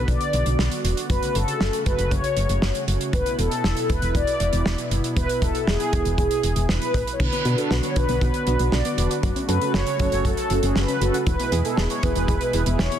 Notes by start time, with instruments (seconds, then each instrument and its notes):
Already playing: analog synth pad D3 B3 F#4
0.08 fm bass B1, analog polysynth D5, kick, closed hi-hat
0.21 closed hi-hat
0.33 fm bass B1, closed hi-hat
0.46 fm bass B1, closed hi-hat
0.59 fm bass B1, snare
0.71 closed hi-hat
0.84 fm bass E1, closed hi-hat
0.97 closed hi-hat
1.10 fm bass F#1, analog synth pad C#3 A3, analog polysynth B4, kick, closed hi-hat
1.23 closed hi-hat
1.35 fm bass F#1, analog polysynth A4, closed hi-hat
1.48 closed hi-hat
1.61 fm bass F#1, snare
1.73 closed hi-hat
1.86 fm bass F#1, analog polysynth B4, kick, closed hi-hat
1.99 fm bass F#1, closed hi-hat
2.11 fm bass F#1, analog polysynth C#5, kick, closed hi-hat
2.24 closed hi-hat
2.37 fm bass F#1, closed hi-hat
2.49 fm bass F#1, closed hi-hat
2.62 fm bass F#1, snare
2.75 closed hi-hat
2.88 fm bass F#1, closed hi-hat
3.01 closed hi-hat
3.13 fm bass E1, analog synth pad B2 B3 E4, analog polysynth B4, kick, closed hi-hat
3.26 closed hi-hat
3.39 fm bass E1, analog polysynth A4, closed hi-hat
3.51 closed hi-hat
3.64 fm bass E1, snare
3.77 closed hi-hat
3.89 fm bass E1, analog polysynth B4, kick, closed hi-hat
4.02 fm bass E1, closed hi-hat
4.15 fm bass E1, analog polysynth D5, kick, closed hi-hat
4.27 closed hi-hat
4.40 fm bass E1, closed hi-hat
4.53 fm bass E1, closed hi-hat
4.66 fm bass E1, snare
4.78 closed hi-hat
4.91 fm bass F#1, closed hi-hat
5.04 closed hi-hat
5.17 fm bass E1, analog polysynth B4, kick, closed hi-hat
5.29 closed hi-hat
5.42 fm bass E1, analog polysynth A4, kick, closed hi-hat
5.55 closed hi-hat
5.67 fm bass E1, analog polysynth G#4, snare
5.80 closed hi-hat
5.93 fm bass E1, kick, closed hi-hat
6.05 fm bass E1, closed hi-hat
6.18 fm bass E1, analog polysynth G#4, kick, closed hi-hat
6.31 closed hi-hat
6.43 fm bass E1, closed hi-hat
6.56 fm bass E1, closed hi-hat
6.69 fm bass E1, analog polysynth B4, snare
6.82 closed hi-hat
6.94 fm bass A1, kick, closed hi-hat
7.07 closed hi-hat
7.13 analog polysynth C#5
7.20 fm bass B1, analog synth pad D3 B3 F#4, synth arpeggio sound D3, analog polysynth B4, kick, crash
7.33 synth arpeggio sound B3, closed hi-hat
7.45 fm bass B2, analog polysynth D4 F#4 B4, synth arpeggio sound F#4, closed hi-hat
7.58 analog polysynth D4 F#4 A4 B4, closed hi-hat
7.71 fm bass B1, synth arpeggio sound F#4, analog polysynth B4, snare
7.83 synth arpeggio sound B3, analog polysynth C#5, closed hi-hat
7.96 fm bass B1, synth arpeggio sound D3, analog polysynth D4 F#4 B4, kick, closed hi-hat
8.09 fm bass B1, synth arpeggio sound B3, analog polysynth D4 F#4 B4, closed hi-hat
8.21 fm bass B1, synth arpeggio sound F#4, analog polysynth B4, kick, closed hi-hat
8.34 closed hi-hat
8.47 fm bass B1, analog polysynth D4 F#4 B4, synth arpeggio sound F#4, closed hi-hat
8.59 fm bass B1, synth arpeggio sound B3, analog polysynth D4 F#4 B4, closed hi-hat
8.72 fm bass B1, synth arpeggio sound D3, analog polysynth D5, snare
8.85 synth arpeggio sound B3, closed hi-hat
8.98 fm bass E1, analog polysynth D4 F#4 B4, closed hi-hat
9.11 synth arpeggio sound D5, closed hi-hat
9.23 fm bass F#1, analog synth pad C#3 A3, synth arpeggio sound F#3, kick, closed hi-hat
9.36 synth arpeggio sound C#4, closed hi-hat
9.49 fm bass F#2, analog polysynth C#4 F#4 A4 B4, synth arpeggio sound A4, closed hi-hat
9.61 analog polysynth C#4 F#4 A4, closed hi-hat
9.74 fm bass F#1, synth arpeggio sound A4, analog polysynth C#5, snare
9.87 synth arpeggio sound C#4, closed hi-hat
9.99 fm bass F#1, synth arpeggio sound F#3, analog polysynth C#4 F#4 A4 C#5, kick, closed hi-hat
10.12 fm bass F#1, synth arpeggio sound C#4, analog polysynth C#4 F#4 A4, closed hi-hat
10.25 fm bass F#1, analog polysynth A4, synth arpeggio sound A4, kick, closed hi-hat
10.37 closed hi-hat
10.50 fm bass F#1, analog polysynth C#4 F#4 A4, synth arpeggio sound A4, closed hi-hat
10.63 fm bass F#1, analog polysynth C#4 F#4 G#4, synth arpeggio sound C#4, closed hi-hat
10.69 analog polysynth C#5
10.76 fm bass F#1, synth arpeggio sound F#3, analog polysynth B4, snare
10.88 synth arpeggio sound C#4, closed hi-hat
11.01 fm bass F#1, analog polysynth C#4 F#4 A4, closed hi-hat
11.14 synth arpeggio sound F#5, closed hi-hat
11.27 fm bass E1, analog synth pad B2 G#3 E4, synth arpeggio sound E3, analog polysynth B4, kick, closed hi-hat
11.40 synth arpeggio sound B3, closed hi-hat
11.52 fm bass E2, analog polysynth B3 E4 G#4, synth arpeggio sound G#4, closed hi-hat
11.65 analog polysynth B3 E4 G#4 A4, closed hi-hat
11.77 fm bass E1, synth arpeggio sound G#4, analog polysynth B4, snare
11.90 synth arpeggio sound B3, analog polysynth C#5, closed hi-hat
12.03 fm bass E1, synth arpeggio sound E3, analog polysynth B3 E4 G#4 B4, kick, closed hi-hat
12.15 fm bass E1, analog polysynth B3 E4 G#4, synth arpeggio sound B3, closed hi-hat
12.28 fm bass E1, synth arpeggio sound G#4, analog polysynth B4, kick, closed hi-hat
12.41 closed hi-hat
12.53 fm bass E1, analog polysynth B3 E4 G#4, synth arpeggio sound G#4, closed hi-hat
12.66 fm bass E1, synth arpeggio sound B3, analog polysynth B3 E4 G#4, closed hi-hat
12.79 fm bass E1, synth arpeggio sound E3, analog polysynth C#5, snare
12.92 synth arpeggio sound B3, closed hi-hat